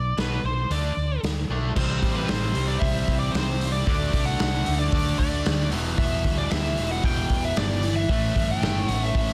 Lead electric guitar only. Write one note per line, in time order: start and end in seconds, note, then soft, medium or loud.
0.00 0.20 D5 loud
0.19 0.45 B4 medium
0.46 0.70 C5 medium
0.72 1.20 D5 medium
1.78 2.15 C5 medium
2.16 2.29 B4 medium
2.29 2.70 C5 medium
2.68 2.80 D5 loud
2.80 3.19 E5 medium
3.19 3.34 D5 medium
3.32 3.74 C5 medium
3.72 4.27 D5 medium
4.25 4.80 F#5 loud
4.79 5.18 D5 loud
5.19 5.68 D5 loud
5.98 6.38 E5 loud
6.38 6.51 D5 medium
6.52 6.92 E5 medium
6.91 7.04 F#5 loud
7.04 7.45 G5 loud
7.45 7.57 E5 medium
7.58 7.94 D5 loud
7.96 8.50 E5 medium
8.51 8.90 G5 medium
8.90 9.04 F#5 medium
9.03 9.33 E5 loud